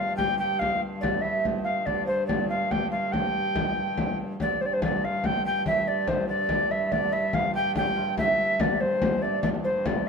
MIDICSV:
0, 0, Header, 1, 5, 480
1, 0, Start_track
1, 0, Tempo, 420463
1, 693, Time_signature, 6, 3, 24, 8
1, 11518, End_track
2, 0, Start_track
2, 0, Title_t, "Recorder"
2, 0, Program_c, 0, 74
2, 0, Note_on_c, 0, 77, 92
2, 180, Note_off_c, 0, 77, 0
2, 187, Note_on_c, 0, 79, 91
2, 422, Note_off_c, 0, 79, 0
2, 440, Note_on_c, 0, 79, 100
2, 672, Note_on_c, 0, 77, 105
2, 689, Note_off_c, 0, 79, 0
2, 923, Note_off_c, 0, 77, 0
2, 1148, Note_on_c, 0, 74, 87
2, 1382, Note_on_c, 0, 76, 95
2, 1399, Note_off_c, 0, 74, 0
2, 1651, Note_off_c, 0, 76, 0
2, 1871, Note_on_c, 0, 77, 87
2, 2118, Note_on_c, 0, 74, 90
2, 2135, Note_off_c, 0, 77, 0
2, 2347, Note_off_c, 0, 74, 0
2, 2354, Note_on_c, 0, 72, 84
2, 2578, Note_off_c, 0, 72, 0
2, 2585, Note_on_c, 0, 74, 81
2, 2822, Note_off_c, 0, 74, 0
2, 2844, Note_on_c, 0, 77, 88
2, 3093, Note_on_c, 0, 79, 88
2, 3111, Note_off_c, 0, 77, 0
2, 3315, Note_off_c, 0, 79, 0
2, 3322, Note_on_c, 0, 77, 84
2, 3562, Note_on_c, 0, 79, 95
2, 3579, Note_off_c, 0, 77, 0
2, 4770, Note_off_c, 0, 79, 0
2, 5038, Note_on_c, 0, 74, 95
2, 5262, Note_on_c, 0, 72, 83
2, 5279, Note_off_c, 0, 74, 0
2, 5314, Note_on_c, 0, 74, 72
2, 5331, Note_off_c, 0, 72, 0
2, 5403, Note_on_c, 0, 72, 90
2, 5420, Note_off_c, 0, 74, 0
2, 5510, Note_off_c, 0, 72, 0
2, 5515, Note_on_c, 0, 74, 90
2, 5755, Note_on_c, 0, 77, 101
2, 5773, Note_off_c, 0, 74, 0
2, 5997, Note_on_c, 0, 79, 104
2, 6014, Note_off_c, 0, 77, 0
2, 6220, Note_off_c, 0, 79, 0
2, 6227, Note_on_c, 0, 79, 104
2, 6446, Note_off_c, 0, 79, 0
2, 6467, Note_on_c, 0, 76, 112
2, 6707, Note_on_c, 0, 74, 101
2, 6725, Note_off_c, 0, 76, 0
2, 6937, Note_on_c, 0, 72, 89
2, 6954, Note_off_c, 0, 74, 0
2, 7165, Note_off_c, 0, 72, 0
2, 7172, Note_on_c, 0, 74, 96
2, 7658, Note_on_c, 0, 76, 95
2, 7676, Note_off_c, 0, 74, 0
2, 7895, Note_on_c, 0, 74, 108
2, 7913, Note_off_c, 0, 76, 0
2, 8131, Note_on_c, 0, 76, 96
2, 8148, Note_off_c, 0, 74, 0
2, 8381, Note_on_c, 0, 77, 96
2, 8398, Note_off_c, 0, 76, 0
2, 8607, Note_off_c, 0, 77, 0
2, 8613, Note_on_c, 0, 79, 116
2, 8838, Note_off_c, 0, 79, 0
2, 8861, Note_on_c, 0, 79, 107
2, 9305, Note_off_c, 0, 79, 0
2, 9338, Note_on_c, 0, 76, 106
2, 9822, Note_on_c, 0, 74, 89
2, 9839, Note_off_c, 0, 76, 0
2, 10050, Note_on_c, 0, 72, 91
2, 10068, Note_off_c, 0, 74, 0
2, 10523, Note_on_c, 0, 74, 83
2, 10540, Note_off_c, 0, 72, 0
2, 10749, Note_off_c, 0, 74, 0
2, 10756, Note_on_c, 0, 74, 88
2, 10825, Note_off_c, 0, 74, 0
2, 11003, Note_on_c, 0, 72, 79
2, 11262, Note_on_c, 0, 74, 79
2, 11280, Note_off_c, 0, 72, 0
2, 11507, Note_off_c, 0, 74, 0
2, 11518, End_track
3, 0, Start_track
3, 0, Title_t, "Lute"
3, 0, Program_c, 1, 24
3, 0, Note_on_c, 1, 65, 82
3, 212, Note_on_c, 1, 67, 86
3, 222, Note_off_c, 1, 65, 0
3, 435, Note_off_c, 1, 67, 0
3, 448, Note_on_c, 1, 67, 84
3, 680, Note_on_c, 1, 65, 75
3, 698, Note_off_c, 1, 67, 0
3, 910, Note_off_c, 1, 65, 0
3, 1174, Note_on_c, 1, 62, 66
3, 1412, Note_off_c, 1, 62, 0
3, 1417, Note_on_c, 1, 64, 76
3, 1892, Note_off_c, 1, 64, 0
3, 1896, Note_on_c, 1, 65, 76
3, 2122, Note_off_c, 1, 65, 0
3, 2127, Note_on_c, 1, 62, 76
3, 2602, Note_off_c, 1, 62, 0
3, 2615, Note_on_c, 1, 62, 72
3, 2856, Note_off_c, 1, 62, 0
3, 2860, Note_on_c, 1, 65, 80
3, 3090, Note_on_c, 1, 67, 82
3, 3105, Note_off_c, 1, 65, 0
3, 3329, Note_on_c, 1, 65, 75
3, 3340, Note_off_c, 1, 67, 0
3, 3499, Note_off_c, 1, 65, 0
3, 3502, Note_on_c, 1, 69, 55
3, 3574, Note_off_c, 1, 69, 0
3, 3579, Note_on_c, 1, 67, 77
3, 4732, Note_off_c, 1, 67, 0
3, 5026, Note_on_c, 1, 62, 78
3, 5269, Note_off_c, 1, 62, 0
3, 5279, Note_on_c, 1, 60, 76
3, 5374, Note_off_c, 1, 60, 0
3, 5387, Note_on_c, 1, 60, 67
3, 5494, Note_off_c, 1, 60, 0
3, 5507, Note_on_c, 1, 62, 68
3, 5749, Note_off_c, 1, 62, 0
3, 5759, Note_on_c, 1, 65, 82
3, 6459, Note_off_c, 1, 65, 0
3, 6463, Note_on_c, 1, 64, 89
3, 6701, Note_off_c, 1, 64, 0
3, 6706, Note_on_c, 1, 62, 74
3, 6925, Note_off_c, 1, 62, 0
3, 6939, Note_on_c, 1, 60, 81
3, 7180, Note_on_c, 1, 62, 78
3, 7185, Note_off_c, 1, 60, 0
3, 7658, Note_off_c, 1, 62, 0
3, 7662, Note_on_c, 1, 64, 86
3, 7888, Note_off_c, 1, 64, 0
3, 7893, Note_on_c, 1, 62, 84
3, 8133, Note_off_c, 1, 62, 0
3, 8137, Note_on_c, 1, 64, 88
3, 8369, Note_off_c, 1, 64, 0
3, 8373, Note_on_c, 1, 65, 83
3, 8603, Note_on_c, 1, 67, 97
3, 8622, Note_off_c, 1, 65, 0
3, 8833, Note_off_c, 1, 67, 0
3, 8846, Note_on_c, 1, 67, 89
3, 9086, Note_on_c, 1, 65, 94
3, 9099, Note_off_c, 1, 67, 0
3, 9325, Note_off_c, 1, 65, 0
3, 9329, Note_on_c, 1, 64, 84
3, 9808, Note_off_c, 1, 64, 0
3, 9812, Note_on_c, 1, 62, 79
3, 10057, Note_on_c, 1, 60, 73
3, 10061, Note_off_c, 1, 62, 0
3, 10482, Note_on_c, 1, 64, 57
3, 10488, Note_off_c, 1, 60, 0
3, 10539, Note_off_c, 1, 64, 0
3, 10552, Note_on_c, 1, 62, 81
3, 10770, Note_off_c, 1, 62, 0
3, 10783, Note_on_c, 1, 62, 85
3, 10833, Note_off_c, 1, 62, 0
3, 10846, Note_on_c, 1, 62, 63
3, 10883, Note_off_c, 1, 62, 0
3, 10896, Note_on_c, 1, 62, 85
3, 10935, Note_off_c, 1, 62, 0
3, 10948, Note_on_c, 1, 62, 57
3, 11017, Note_on_c, 1, 60, 79
3, 11021, Note_off_c, 1, 62, 0
3, 11510, Note_off_c, 1, 60, 0
3, 11518, End_track
4, 0, Start_track
4, 0, Title_t, "Hurdy-gurdy"
4, 0, Program_c, 2, 110
4, 0, Note_on_c, 2, 43, 68
4, 5015, Note_off_c, 2, 43, 0
4, 5015, Note_on_c, 2, 43, 76
4, 10778, Note_off_c, 2, 43, 0
4, 10778, Note_on_c, 2, 43, 83
4, 11518, Note_off_c, 2, 43, 0
4, 11518, End_track
5, 0, Start_track
5, 0, Title_t, "Frame drum"
5, 212, Note_on_c, 9, 64, 82
5, 326, Note_off_c, 9, 64, 0
5, 700, Note_on_c, 9, 64, 80
5, 815, Note_off_c, 9, 64, 0
5, 1178, Note_on_c, 9, 64, 92
5, 1292, Note_off_c, 9, 64, 0
5, 1657, Note_on_c, 9, 64, 77
5, 1771, Note_off_c, 9, 64, 0
5, 2130, Note_on_c, 9, 64, 73
5, 2244, Note_off_c, 9, 64, 0
5, 2617, Note_on_c, 9, 64, 92
5, 2731, Note_off_c, 9, 64, 0
5, 3097, Note_on_c, 9, 64, 88
5, 3211, Note_off_c, 9, 64, 0
5, 3578, Note_on_c, 9, 64, 87
5, 3692, Note_off_c, 9, 64, 0
5, 4059, Note_on_c, 9, 64, 100
5, 4173, Note_off_c, 9, 64, 0
5, 4537, Note_on_c, 9, 64, 90
5, 4651, Note_off_c, 9, 64, 0
5, 5022, Note_on_c, 9, 64, 86
5, 5137, Note_off_c, 9, 64, 0
5, 5503, Note_on_c, 9, 64, 101
5, 5617, Note_off_c, 9, 64, 0
5, 5978, Note_on_c, 9, 64, 89
5, 6092, Note_off_c, 9, 64, 0
5, 6458, Note_on_c, 9, 64, 78
5, 6572, Note_off_c, 9, 64, 0
5, 6935, Note_on_c, 9, 64, 93
5, 7049, Note_off_c, 9, 64, 0
5, 7407, Note_on_c, 9, 64, 92
5, 7522, Note_off_c, 9, 64, 0
5, 7897, Note_on_c, 9, 64, 78
5, 8011, Note_off_c, 9, 64, 0
5, 8371, Note_on_c, 9, 64, 96
5, 8485, Note_off_c, 9, 64, 0
5, 8853, Note_on_c, 9, 64, 96
5, 8967, Note_off_c, 9, 64, 0
5, 9333, Note_on_c, 9, 64, 90
5, 9447, Note_off_c, 9, 64, 0
5, 9813, Note_on_c, 9, 64, 103
5, 9927, Note_off_c, 9, 64, 0
5, 10054, Note_on_c, 9, 64, 27
5, 10168, Note_off_c, 9, 64, 0
5, 10294, Note_on_c, 9, 64, 103
5, 10408, Note_off_c, 9, 64, 0
5, 10532, Note_on_c, 9, 64, 31
5, 10646, Note_off_c, 9, 64, 0
5, 10766, Note_on_c, 9, 64, 93
5, 10880, Note_off_c, 9, 64, 0
5, 11251, Note_on_c, 9, 64, 110
5, 11365, Note_off_c, 9, 64, 0
5, 11518, End_track
0, 0, End_of_file